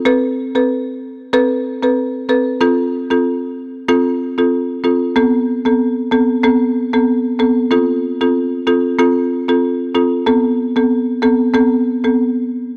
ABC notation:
X:1
M:4/4
L:1/16
Q:"Swing 16ths" 1/4=94
K:Am
V:1 name="Marimba"
[CAB]3 [CAB] z4 [CAB]3 [CAB] z2 [CAB] z | [CFA]3 [CFA] z4 [CFA]3 [CFA] z2 [CFA] z | [B,CA] z2 [B,CA] z2 [B,CA] z [B,CA]3 [B,CA] z2 [B,CA] z | [CFA] z2 [CFA] z2 [CFA] z [CFA]3 [CFA] z2 [CFA] z |
[B,CA] z2 [B,CA] z2 [B,CA] z [B,CA]3 [B,CA] z4 |]